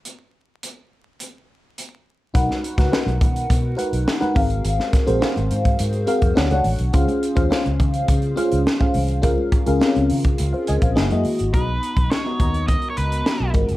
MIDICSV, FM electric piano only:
0, 0, Header, 1, 2, 480
1, 0, Start_track
1, 0, Tempo, 574163
1, 45, Time_signature, 4, 2, 24, 8
1, 11511, End_track
2, 0, Start_track
2, 0, Title_t, "FM electric piano"
2, 0, Program_c, 0, 5
2, 1955, Note_on_c, 0, 63, 77
2, 1961, Note_on_c, 0, 71, 70
2, 1962, Note_on_c, 0, 70, 67
2, 1963, Note_on_c, 0, 66, 70
2, 1967, Note_on_c, 0, 78, 83
2, 2111, Control_c, 0, 64, 127
2, 2288, Note_off_c, 0, 63, 0
2, 2291, Note_off_c, 0, 70, 0
2, 2291, Note_off_c, 0, 71, 0
2, 2292, Note_off_c, 0, 66, 0
2, 2293, Note_off_c, 0, 78, 0
2, 2321, Note_on_c, 0, 63, 84
2, 2323, Note_on_c, 0, 66, 81
2, 2327, Note_on_c, 0, 71, 70
2, 2330, Note_on_c, 0, 70, 76
2, 2332, Note_on_c, 0, 78, 89
2, 2422, Note_off_c, 0, 63, 0
2, 2426, Note_off_c, 0, 66, 0
2, 2432, Note_off_c, 0, 70, 0
2, 2432, Note_on_c, 0, 63, 78
2, 2434, Note_off_c, 0, 78, 0
2, 2435, Note_off_c, 0, 71, 0
2, 2437, Note_on_c, 0, 66, 68
2, 2442, Note_on_c, 0, 70, 70
2, 2444, Note_on_c, 0, 71, 69
2, 2444, Note_on_c, 0, 78, 80
2, 3095, Note_off_c, 0, 63, 0
2, 3097, Note_off_c, 0, 66, 0
2, 3100, Note_off_c, 0, 70, 0
2, 3101, Note_off_c, 0, 71, 0
2, 3101, Note_off_c, 0, 78, 0
2, 3146, Note_on_c, 0, 63, 80
2, 3151, Note_on_c, 0, 66, 68
2, 3154, Note_on_c, 0, 70, 70
2, 3157, Note_on_c, 0, 71, 75
2, 3162, Note_on_c, 0, 78, 89
2, 3483, Note_off_c, 0, 63, 0
2, 3486, Note_off_c, 0, 66, 0
2, 3488, Note_off_c, 0, 70, 0
2, 3489, Note_off_c, 0, 71, 0
2, 3491, Note_off_c, 0, 78, 0
2, 3512, Note_on_c, 0, 63, 77
2, 3516, Note_on_c, 0, 66, 64
2, 3519, Note_on_c, 0, 70, 71
2, 3519, Note_on_c, 0, 71, 62
2, 3521, Note_on_c, 0, 78, 84
2, 3627, Note_off_c, 0, 66, 0
2, 3629, Note_off_c, 0, 70, 0
2, 3637, Note_on_c, 0, 60, 89
2, 3637, Note_on_c, 0, 66, 71
2, 3638, Note_off_c, 0, 63, 0
2, 3639, Note_on_c, 0, 70, 74
2, 3641, Note_off_c, 0, 71, 0
2, 3642, Note_off_c, 0, 78, 0
2, 3643, Note_on_c, 0, 68, 74
2, 3646, Note_on_c, 0, 77, 91
2, 3655, Control_c, 0, 64, 0
2, 3809, Control_c, 0, 64, 127
2, 4189, Note_off_c, 0, 60, 0
2, 4189, Note_off_c, 0, 66, 0
2, 4190, Note_off_c, 0, 70, 0
2, 4191, Note_off_c, 0, 68, 0
2, 4193, Note_off_c, 0, 77, 0
2, 4233, Note_on_c, 0, 60, 87
2, 4234, Note_on_c, 0, 66, 74
2, 4238, Note_on_c, 0, 70, 72
2, 4240, Note_on_c, 0, 68, 73
2, 4241, Note_on_c, 0, 72, 86
2, 4342, Note_off_c, 0, 60, 0
2, 4346, Note_off_c, 0, 66, 0
2, 4348, Note_off_c, 0, 68, 0
2, 4350, Note_off_c, 0, 70, 0
2, 4352, Note_off_c, 0, 72, 0
2, 4352, Note_on_c, 0, 60, 78
2, 4356, Note_on_c, 0, 66, 70
2, 4358, Note_on_c, 0, 68, 68
2, 4362, Note_on_c, 0, 77, 83
2, 4363, Note_on_c, 0, 70, 71
2, 5016, Note_off_c, 0, 60, 0
2, 5018, Note_off_c, 0, 66, 0
2, 5019, Note_off_c, 0, 68, 0
2, 5021, Note_off_c, 0, 77, 0
2, 5022, Note_off_c, 0, 70, 0
2, 5072, Note_on_c, 0, 60, 83
2, 5075, Note_on_c, 0, 66, 78
2, 5079, Note_on_c, 0, 68, 77
2, 5080, Note_on_c, 0, 70, 73
2, 5082, Note_on_c, 0, 77, 97
2, 5304, Note_off_c, 0, 66, 0
2, 5309, Note_on_c, 0, 62, 85
2, 5314, Note_on_c, 0, 66, 82
2, 5314, Note_on_c, 0, 69, 77
2, 5318, Note_off_c, 0, 60, 0
2, 5318, Note_on_c, 0, 73, 73
2, 5322, Note_off_c, 0, 68, 0
2, 5323, Note_off_c, 0, 70, 0
2, 5323, Note_off_c, 0, 77, 0
2, 5323, Note_on_c, 0, 78, 84
2, 5337, Control_c, 0, 64, 0
2, 5427, Note_off_c, 0, 62, 0
2, 5429, Note_off_c, 0, 66, 0
2, 5429, Note_off_c, 0, 69, 0
2, 5431, Note_off_c, 0, 73, 0
2, 5434, Note_off_c, 0, 78, 0
2, 5440, Note_on_c, 0, 62, 76
2, 5440, Note_on_c, 0, 66, 68
2, 5442, Note_on_c, 0, 69, 71
2, 5447, Note_on_c, 0, 73, 67
2, 5451, Note_on_c, 0, 78, 82
2, 5483, Control_c, 0, 64, 127
2, 5771, Note_off_c, 0, 62, 0
2, 5772, Note_off_c, 0, 66, 0
2, 5773, Note_off_c, 0, 69, 0
2, 5775, Note_off_c, 0, 73, 0
2, 5777, Note_off_c, 0, 78, 0
2, 5794, Note_on_c, 0, 61, 78
2, 5798, Note_on_c, 0, 65, 69
2, 5798, Note_on_c, 0, 72, 78
2, 5802, Note_on_c, 0, 68, 72
2, 5803, Note_on_c, 0, 77, 88
2, 5815, Control_c, 0, 64, 0
2, 5949, Control_c, 0, 64, 127
2, 6129, Note_off_c, 0, 61, 0
2, 6130, Note_off_c, 0, 72, 0
2, 6131, Note_off_c, 0, 65, 0
2, 6133, Note_off_c, 0, 68, 0
2, 6133, Note_off_c, 0, 77, 0
2, 6148, Note_on_c, 0, 61, 82
2, 6150, Note_on_c, 0, 65, 76
2, 6154, Note_on_c, 0, 72, 74
2, 6156, Note_on_c, 0, 68, 75
2, 6159, Note_on_c, 0, 77, 91
2, 6260, Note_off_c, 0, 61, 0
2, 6260, Note_off_c, 0, 65, 0
2, 6263, Note_off_c, 0, 72, 0
2, 6264, Note_off_c, 0, 68, 0
2, 6266, Note_off_c, 0, 77, 0
2, 6270, Note_on_c, 0, 61, 75
2, 6270, Note_on_c, 0, 65, 70
2, 6273, Note_on_c, 0, 72, 71
2, 6274, Note_on_c, 0, 68, 72
2, 6276, Note_on_c, 0, 77, 85
2, 6936, Note_off_c, 0, 61, 0
2, 6936, Note_off_c, 0, 65, 0
2, 6937, Note_off_c, 0, 72, 0
2, 6938, Note_off_c, 0, 68, 0
2, 6939, Note_off_c, 0, 77, 0
2, 6987, Note_on_c, 0, 61, 89
2, 6987, Note_on_c, 0, 65, 77
2, 6997, Note_on_c, 0, 68, 78
2, 6997, Note_on_c, 0, 72, 79
2, 6999, Note_on_c, 0, 77, 92
2, 7325, Note_off_c, 0, 61, 0
2, 7326, Note_off_c, 0, 65, 0
2, 7330, Note_off_c, 0, 68, 0
2, 7331, Note_off_c, 0, 72, 0
2, 7331, Note_off_c, 0, 77, 0
2, 7355, Note_on_c, 0, 61, 70
2, 7355, Note_on_c, 0, 65, 73
2, 7359, Note_on_c, 0, 72, 68
2, 7360, Note_on_c, 0, 68, 68
2, 7363, Note_on_c, 0, 77, 82
2, 7689, Note_off_c, 0, 61, 0
2, 7689, Note_off_c, 0, 65, 0
2, 7691, Note_off_c, 0, 72, 0
2, 7692, Note_off_c, 0, 68, 0
2, 7693, Note_off_c, 0, 77, 0
2, 7707, Note_on_c, 0, 61, 79
2, 7709, Note_on_c, 0, 68, 68
2, 7712, Note_on_c, 0, 65, 76
2, 7713, Note_on_c, 0, 70, 72
2, 7720, Note_on_c, 0, 77, 86
2, 7735, Control_c, 0, 64, 0
2, 7888, Control_c, 0, 64, 127
2, 8045, Note_off_c, 0, 61, 0
2, 8046, Note_off_c, 0, 68, 0
2, 8047, Note_off_c, 0, 65, 0
2, 8048, Note_off_c, 0, 70, 0
2, 8052, Note_off_c, 0, 77, 0
2, 8078, Note_on_c, 0, 65, 76
2, 8079, Note_on_c, 0, 61, 77
2, 8080, Note_on_c, 0, 68, 76
2, 8084, Note_on_c, 0, 70, 75
2, 8088, Note_on_c, 0, 77, 87
2, 8182, Note_off_c, 0, 65, 0
2, 8187, Note_off_c, 0, 68, 0
2, 8191, Note_off_c, 0, 70, 0
2, 8192, Note_off_c, 0, 61, 0
2, 8192, Note_off_c, 0, 77, 0
2, 8192, Note_on_c, 0, 65, 75
2, 8193, Note_on_c, 0, 60, 59
2, 8197, Note_on_c, 0, 68, 70
2, 8201, Note_on_c, 0, 70, 71
2, 8202, Note_on_c, 0, 77, 82
2, 8243, Note_on_c, 0, 61, 78
2, 8254, Note_off_c, 0, 60, 0
2, 8683, Note_off_c, 0, 77, 0
2, 8800, Note_on_c, 0, 77, 67
2, 8808, Note_on_c, 0, 72, 53
2, 8856, Note_off_c, 0, 65, 0
2, 8859, Note_off_c, 0, 68, 0
2, 8860, Note_off_c, 0, 70, 0
2, 8881, Note_off_c, 0, 61, 0
2, 8916, Note_off_c, 0, 77, 0
2, 8921, Note_off_c, 0, 72, 0
2, 8928, Note_on_c, 0, 80, 63
2, 8933, Note_on_c, 0, 75, 60
2, 9041, Note_off_c, 0, 80, 0
2, 9043, Note_off_c, 0, 75, 0
2, 9048, Note_on_c, 0, 77, 54
2, 9056, Note_on_c, 0, 72, 45
2, 9156, Note_on_c, 0, 58, 88
2, 9159, Note_on_c, 0, 68, 84
2, 9160, Note_on_c, 0, 64, 79
2, 9160, Note_on_c, 0, 66, 71
2, 9162, Note_on_c, 0, 75, 85
2, 9177, Control_c, 0, 64, 0
2, 9270, Note_off_c, 0, 58, 0
2, 9272, Note_off_c, 0, 64, 0
2, 9272, Note_off_c, 0, 66, 0
2, 9272, Note_off_c, 0, 68, 0
2, 9273, Note_off_c, 0, 75, 0
2, 9274, Note_off_c, 0, 77, 0
2, 9279, Note_off_c, 0, 72, 0
2, 9287, Note_on_c, 0, 58, 76
2, 9289, Note_on_c, 0, 66, 70
2, 9293, Note_on_c, 0, 64, 68
2, 9293, Note_on_c, 0, 68, 71
2, 9298, Note_on_c, 0, 75, 85
2, 9319, Control_c, 0, 64, 127
2, 9614, Note_off_c, 0, 58, 0
2, 9615, Note_off_c, 0, 66, 0
2, 9618, Note_off_c, 0, 64, 0
2, 9618, Note_off_c, 0, 68, 0
2, 9620, Note_off_c, 0, 75, 0
2, 9642, Note_on_c, 0, 59, 64
2, 9647, Note_on_c, 0, 63, 56
2, 9650, Note_on_c, 0, 82, 54
2, 9651, Note_on_c, 0, 66, 53
2, 9656, Control_c, 0, 64, 0
2, 9657, Note_on_c, 0, 75, 71
2, 9796, Control_c, 0, 64, 127
2, 10191, Note_off_c, 0, 59, 0
2, 10193, Note_off_c, 0, 63, 0
2, 10195, Note_off_c, 0, 66, 0
2, 10195, Note_off_c, 0, 82, 0
2, 10198, Note_off_c, 0, 75, 0
2, 10247, Note_on_c, 0, 59, 63
2, 10248, Note_on_c, 0, 63, 58
2, 10249, Note_on_c, 0, 66, 56
2, 10253, Note_on_c, 0, 70, 55
2, 10254, Note_on_c, 0, 75, 71
2, 10355, Note_off_c, 0, 59, 0
2, 10355, Note_off_c, 0, 63, 0
2, 10356, Note_off_c, 0, 66, 0
2, 10358, Note_off_c, 0, 70, 0
2, 10358, Note_off_c, 0, 75, 0
2, 10364, Note_on_c, 0, 59, 73
2, 10367, Note_on_c, 0, 63, 66
2, 10369, Note_on_c, 0, 66, 66
2, 10376, Note_on_c, 0, 75, 79
2, 10376, Note_on_c, 0, 82, 69
2, 11239, Note_off_c, 0, 59, 0
2, 11241, Note_off_c, 0, 63, 0
2, 11242, Note_off_c, 0, 66, 0
2, 11245, Note_off_c, 0, 75, 0
2, 11245, Note_off_c, 0, 82, 0
2, 11309, Note_on_c, 0, 56, 71
2, 11314, Note_on_c, 0, 60, 54
2, 11316, Note_on_c, 0, 65, 60
2, 11320, Note_on_c, 0, 66, 62
2, 11321, Note_on_c, 0, 70, 70
2, 11333, Control_c, 0, 64, 0
2, 11473, Control_c, 0, 64, 127
2, 11511, Note_off_c, 0, 56, 0
2, 11511, Note_off_c, 0, 60, 0
2, 11511, Note_off_c, 0, 65, 0
2, 11511, Note_off_c, 0, 66, 0
2, 11511, Note_off_c, 0, 70, 0
2, 11511, End_track
0, 0, End_of_file